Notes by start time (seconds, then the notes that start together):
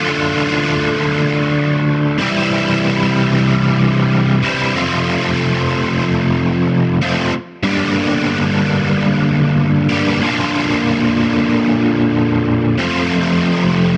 Already playing: D3 A3 D4 F4
2.18 C3 E3 G3 C4 E4
4.42 C3 E3 G3 C4 E4
4.74 F2 C3 F3 A3 C4 F4
7.01 F2 C3 F3 A3 C4 F4
7.63 G2 D3 G3 A#3 D4 G4
9.89 G2 D3 G3 A#3 D4 G4
10.20 A#2 D3 A#3 D4 F4
12.78 F2 C3 F3 A3 C4 F4